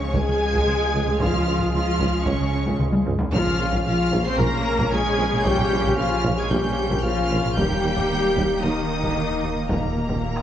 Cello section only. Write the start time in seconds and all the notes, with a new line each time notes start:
Already playing: C#3
0.14 G#3
1.20 F3
1.74 F3
2.26 C#3
3.33 F3
3.86 F3
4.26 C4
4.39 A#3
4.92 G#3
5.44 G3
5.98 F3
6.38 G#3
6.51 G3
7.04 F3
7.57 G3
8.63 D#3
9.70 A#2